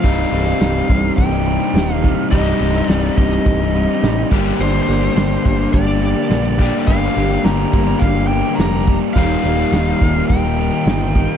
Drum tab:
HH |o-o-o-o-|o-o-o-o-|o-o-o-o-|o-o-o-o-|
SD |--o---o-|--o---o-|--o---o-|--o---o-|
BD |o--oo--o|o--oo--o|---oo--o|o--oo--o|

HH |o-o-o-o-|
SD |--o---o-|
BD |o--oo--o|